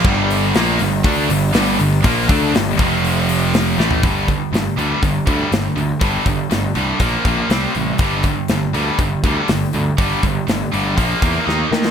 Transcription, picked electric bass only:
\new Staff \with { instrumentName = "Picked electric bass" } { \clef bass \time 4/4 \key g \minor \tempo 4 = 121 g,,4 bes,,8 g,,8 d,8 g,,8 g,,8 g,,8 | bes,,8 d,8 g,,8 f,,2 a,,8 | g,,4 g,,8 d,8 g,,8 d,8 g,,8 d,8 | g,,8 g,,8 g,,8 c,8 bes,,8 bes,,8 c,8 a,,8 |
g,,4 g,,8 d,8 g,,8 d,8 g,,8 d,8 | g,,8 g,,8 g,,8 g,,8 bes,,8 e,8 ees,8 ees8 | }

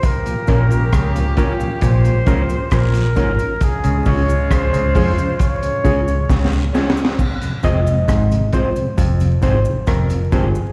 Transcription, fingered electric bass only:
\new Staff \with { instrumentName = "Fingered electric bass" } { \clef bass \time 4/4 \key f \minor \tempo 4 = 67 r8 bes,,8 des,8 r8 bes,,8 des,16 r16 bes,,8 aes,,16 r16 | r16 des,16 des,8 des,16 des,16 f,16 r8. des,8 des,8 r8 | r8 f,,8 aes,,8 r8 f,,8 aes,,16 r16 f,,8 g,,16 r16 | }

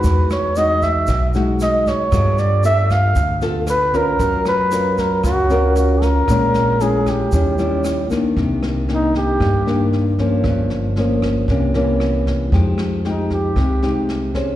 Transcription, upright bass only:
\new Staff \with { instrumentName = "Upright bass" } { \clef bass \time 4/4 \key e \lydian \tempo 4 = 115 e,2 b,,2 | g,2 d,2 | fis,2 cis,2 | ais,,2 dis,2 |
\key c \minor c,2 g,2 | g,,2 c,2 | f,2 c,2 | }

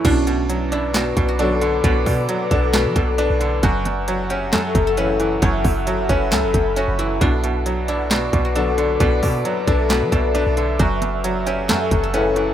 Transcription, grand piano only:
\new Staff \with { instrumentName = "Grand piano" } { \clef bass \time 4/4 \key b \minor \tempo 4 = 134 b,8 b,8 fis8 d'8 b,8 b,8 d'8 d8 | b,8 b,8 fis8 d'8 b,8 b,8 d'8 d8 | fis,8 fis,8 fis8 cis'8 fis,8 fis,8 cis'8 e8 | fis,8 fis,8 fis8 cis'8 fis,8 fis,8 cis'8 e8 |
b,8 b,8 fis8 d'8 b,8 b,8 d'8 d8 | b,8 b,8 fis8 d'8 b,8 b,8 d'8 d8 | fis,8 fis,8 fis8 cis'8 fis,8 fis,8 cis'8 e8 | }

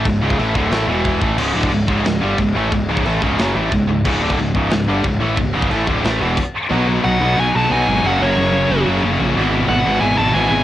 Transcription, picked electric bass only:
\new Staff \with { instrumentName = "Picked electric bass" } { \clef bass \time 4/4 \key cis \minor \tempo 4 = 180 cis,,8 cis,,8 a,,8 d,,8 a,,8 e,,4 a,,8 | cis,,8 d,,8 cis,,8 cis,,8 cis,,8 g,,8 cis,,8 a,,8 | cis,,8 cis,,8 a,,8 cis,,8 fis,,8 a,,8 cis,,8 cis,,8 | cis,,8 d,,8 cis,,8 cis,,8 cis,,8 g,,8 cis,,8 a,,8 |
cis,,8 cis,,8 a,,8 d,,8 a,,8 e,,8 r4 | b,,4 b,,8 b,,8 b,,8 b,,8 b,,8 gis,,8 | fis,,8 fis,,8 fis,,4 fis,,8 fis,,8 fis,,8 ais,,8 | gis,,4 gis,,8 gis,,8 gis,,8 gis,,8 gis,,8 gis,,8 | }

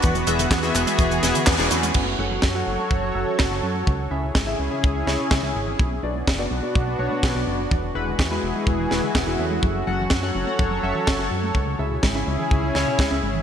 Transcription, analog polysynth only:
\new Staff \with { instrumentName = "Analog polysynth" } { \time 4/4 \key fis \minor \tempo 4 = 125 r8 <e b fis' gis' e''>16 r8 <e b fis' gis' e''>8 <e b fis' gis' e''>8. <e b fis' gis' e''>16 r8 <e b fis' gis' d''>16 <a cis' fis' b'>8~ | <a cis' fis' b'>8 <fis cis' fis' a' fis''>16 r8 <fis cis' fis' a' fis''>8 <fis cis' fis' a' fis''>8. <fis cis' fis' a' e''>8. <fis cis' fis' a' fis''>8 r16 | r8 <cis cis' e' gis' e''>16 r8 <cis cis' e' gis' e''>8 <cis cis' e' gis' e''>8. <cis cis' e' gis' cis''>8. <cis cis' e' gis' e''>8 r16 | r8 <b, b d' fis' d''>16 r8 <b, b d' fis' d''>8 <b, b d' fis' d''>8. <b, b d' fis' cis''>8. <b, b d' fis' d''>8 r16 |
r8 <gis e' fis' b'>16 r8 <gis e' fis' b'>8 <gis e' fis' b'>8. <gis e' fis' b'>16 r8 <gis e' fis' gis'>16 <fis cis' fis' a' e''>8~ | <fis cis' fis' a' e''>8 <fis cis' fis' a' fis''>16 r8 <fis cis' fis' a' fis''>8 <fis cis' fis' a' fis''>8. <fis cis' fis' a' e''>8. <fis cis' fis' a' fis''>8 r16 | r8 <cis cis' e' gis' e''>16 r8 <cis cis' e' gis' e''>8 <cis cis' e' gis' e''>8. <cis cis' e' gis' cis''>8. <cis cis' e' gis' e''>8 r16 | }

